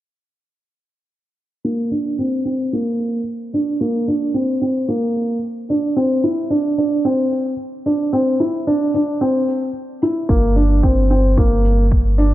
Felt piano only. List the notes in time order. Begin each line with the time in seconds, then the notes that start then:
1.65 A#3
1.91 D4
2.19 C4
2.45 C4
2.73 A#3
3.54 D4
3.81 A#3
4.08 D4
4.34 C4
4.62 C4
4.89 A#3
5.70 D4
5.96 C4
6.24 E4
6.50 D4
6.78 D4
7.05 C4
7.86 D4
8.13 C4
8.40 E4
8.67 D4
8.94 D4
9.21 C4
10.03 E4
10.29 A#3
10.56 D4
10.83 C4
11.10 C4
11.38 A#3
12.18 D4